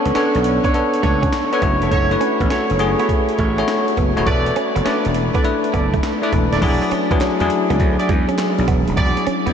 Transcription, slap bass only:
0.06 0.13 C#2 medium
0.16 muted slap bass stroke soft
0.35 0.58 B1 medium
1.04 1.27 C#2 medium
1.62 1.78 F#1 medium
1.82 1.90 F1 medium
1.92 2.15 F#1 medium
2.41 2.48 A1 medium
2.51 muted slap bass stroke soft
2.71 2.94 F#1 medium
3.39 3.62 A1 medium
3.97 4.13 F#1 medium
4.18 4.25 D#1 loud
4.27 4.50 E1 medium
4.76 4.84 F#1 medium
4.86 muted slap bass stroke medium
5.06 5.29 E1 medium
5.74 5.97 F#1 medium
6.33 6.48 E1 medium
6.53 6.60 D#1 medium
6.62 6.78 E1 loud
6.92 muted slap bass stroke soft
7.11 7.19 E2 medium
7.21 muted slap bass stroke soft
7.41 7.48 E2 medium
7.70 7.78 C#2 medium
7.80 7.95 D2 loud
8.09 8.25 E2 loud
8.59 8.66 B1 medium
8.68 8.84 E1 medium
8.88 8.96 D#1 medium
8.98 9.13 E1 loud
9.27 muted slap bass stroke soft
9.47 9.53 E2 medium

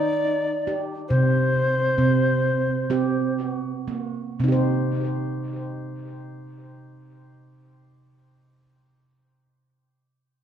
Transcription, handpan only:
0.00 0.88 D#4 loud
0.67 1.53 G4 medium
1.10 1.83 C3 loud
1.98 2.74 C3 medium
1.98 2.89 C4 medium
2.90 4.14 C4 loud
2.90 3.88 G4 medium
3.88 4.39 A#3 medium
4.40 8.34 C3 medium
4.40 8.35 C4 medium
4.44 8.38 D#4 medium
4.48 8.43 G4 medium
4.48 8.46 C5 medium

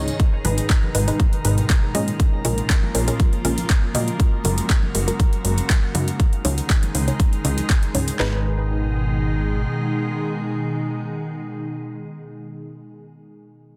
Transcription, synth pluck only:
0.00 0.42 G#2 loud
0.00 0.42 G#3 medium
0.00 0.42 D#4 medium
0.00 0.42 C#5 loud
0.45 0.92 G#2 medium
0.45 0.92 G#3 medium
0.45 0.92 D#4 medium
0.45 0.92 B4 medium
0.95 1.05 G#2 medium
0.95 1.05 G#3 medium
0.95 1.05 D#4 medium
0.95 1.05 B4 medium
1.08 1.22 G#2 medium
1.08 1.22 G#3 medium
1.08 1.22 D#4 medium
1.08 1.22 B4 medium
1.45 1.60 G#2 medium
1.45 1.60 G#3 medium
1.45 1.60 D#4 medium
1.45 1.60 B4 loud
1.95 2.42 A#2 medium
1.95 2.42 G#3 medium
1.95 2.42 C#4 medium
1.95 2.42 D#5 loud
2.45 2.92 A#2 medium
2.45 2.92 G#3 medium
2.45 2.92 C#4 medium
2.45 2.92 A#4 medium
2.95 3.05 A#2 medium
2.95 3.05 G#3 medium
2.95 3.05 C#4 medium
2.95 3.05 A#4 medium
3.08 3.22 A#2 medium
3.08 3.22 G#3 medium
3.08 3.22 C#4 medium
3.08 3.22 A#4 medium
3.45 3.60 A#2 medium
3.45 3.60 G#3 medium
3.45 3.60 C#4 medium
3.45 3.60 A#4 loud
3.95 4.42 G#3 medium
3.95 4.42 F#4 medium
3.95 4.42 D#5 loud
4.45 4.92 G#3 medium
4.45 4.92 F#4 medium
4.45 4.92 A#4 medium
4.95 5.05 G#3 medium
4.95 5.05 F#4 medium
4.95 5.05 A#4 medium
5.08 5.22 G#3 medium
5.08 5.22 F#4 medium
5.08 5.22 A#4 medium
5.45 5.60 G#3 medium
5.45 5.60 F#4 medium
5.45 5.60 A#4 loud
5.95 6.42 C#3 medium
5.95 6.42 G#3 medium
5.95 6.42 D#4 medium
5.95 6.42 F5 loud
6.45 6.92 C#3 medium
6.45 6.92 G#3 medium
6.45 6.92 D#4 medium
6.45 6.92 C#5 medium
6.95 7.05 C#3 medium
6.95 7.05 G#3 medium
6.95 7.05 D#4 medium
6.95 7.05 C#5 medium
7.08 7.22 C#3 medium
7.08 7.22 G#3 medium
7.08 7.22 D#4 medium
7.08 7.22 C#5 medium
7.45 7.60 C#3 medium
7.45 7.60 G#3 medium
7.45 7.60 D#4 medium
7.45 7.60 D#5 medium
7.95 8.42 G#2 loud
7.95 8.18 G#3 medium
7.95 8.18 D#4 medium
7.95 8.42 C#5 loud
8.20 12.80 G#3 medium
8.20 12.80 D#4 medium
8.20 12.80 B4 medium

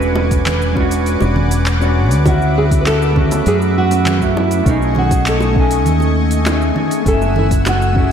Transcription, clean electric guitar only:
0.00 0.71 G#3 medium
0.00 0.72 C#4 medium
0.00 0.74 D4 medium
0.00 0.75 F#4 loud
0.72 1.76 G#3 medium
0.72 1.78 C#4 medium
0.77 1.79 D4 medium
0.77 1.80 F#4 loud
1.79 2.22 G#3 medium
1.79 2.22 C#4 medium
1.79 2.23 D4 medium
1.79 2.24 F#4 medium
2.23 3.11 A3 medium
2.23 3.12 C#4 medium
2.28 3.14 E4 medium
2.28 3.15 F#4 loud
3.12 4.17 A3 loud
3.12 4.18 C#4 medium
3.18 4.19 E4 medium
3.18 4.20 F#4 loud
4.19 4.62 A3 medium
4.19 4.63 C#4 medium
4.19 4.63 E4 medium
4.24 4.64 F#4 medium
4.63 5.51 A3 medium
4.63 5.52 C#4 medium
4.68 5.54 D#4 medium
4.68 5.55 G#4 loud
5.52 6.42 A3 medium
5.52 6.43 C#4 medium
5.58 6.44 D#4 medium
5.58 6.45 G#5 loud
6.44 6.72 A3 medium
6.44 6.72 C#4 medium
6.44 6.73 D#4 medium
6.44 6.74 G#4 medium
6.74 7.01 A3 medium
6.74 7.03 C#4 medium
6.74 7.03 D#4 medium
6.74 7.04 G#4 medium
7.02 7.91 A3 medium
7.02 7.92 C#4 medium
7.08 7.93 E4 medium
7.08 7.95 G#5 loud
7.92 8.12 A3 medium
7.92 8.12 C#4 medium
7.97 8.12 E4 medium
7.97 8.12 G#4 loud

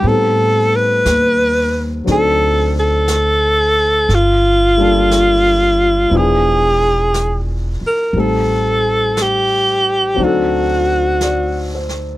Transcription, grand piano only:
0.00 2.05 G3 soft
0.00 2.06 B3 soft
0.05 2.04 C4 soft
0.05 2.07 D#4 soft
0.11 2.08 A4 soft
2.04 4.09 F#3 soft
2.04 4.09 C4 soft
2.04 4.10 D4 soft
2.08 4.11 D#4 soft
2.08 4.11 A4 soft
4.77 6.12 G3 soft
4.77 6.12 A#3 soft
4.77 6.11 D4 soft
4.77 6.14 F4 soft
4.82 6.14 A4 medium
6.10 8.14 F3 soft
6.10 8.14 B3 soft
6.10 8.15 D4 soft
6.10 8.15 E4 soft
6.15 8.16 G#4 soft
8.16 10.19 G3 soft
8.16 10.19 A3 soft
8.16 10.15 C4 soft
8.16 10.20 D#4 soft
8.16 10.20 A4 soft
10.14 12.18 F#3 soft
10.14 12.18 C4 soft
10.19 12.18 D4 soft
10.19 12.18 D#4 soft
10.25 12.18 A4 medium
11.23 12.04 D5 soft
11.75 12.18 C5 soft

